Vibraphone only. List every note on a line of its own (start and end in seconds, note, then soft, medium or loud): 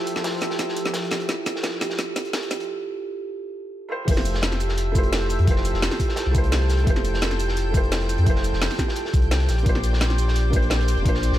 0.00 1.29 E4 medium
0.00 0.24 F4 medium
0.00 0.41 G4 loud
0.00 0.76 A4 medium
0.24 0.34 F4 medium
0.41 0.57 G4 loud
0.76 0.92 A4 medium
1.11 1.28 G4 medium
1.29 1.44 E4 medium
1.64 1.73 F4 medium
1.81 1.97 G4 loud
2.16 2.32 A4 medium
2.51 2.68 G4 medium
4.08 4.24 E4 medium
4.43 4.53 F4 medium
4.60 4.76 G4 loud
4.95 5.11 A4 medium
5.30 5.47 G4 medium
5.47 5.63 E4 medium
5.82 5.92 F4 medium
6.00 6.16 G4 loud
6.35 6.50 A4 medium
6.69 6.86 G4 medium
6.87 7.03 E4 medium
7.22 7.32 F4 medium
7.39 7.55 G4 loud
7.74 7.90 A4 medium
8.09 8.26 G4 medium
8.26 8.42 E4 medium
8.61 8.71 F4 medium
8.79 8.95 G4 loud
9.14 9.29 A4 medium
9.49 9.65 G4 medium
9.66 9.82 D4 medium
10.01 10.11 F4 medium
10.18 10.34 G4 loud
10.53 10.69 A#4 medium
10.88 11.05 G4 medium
11.06 11.21 D4 medium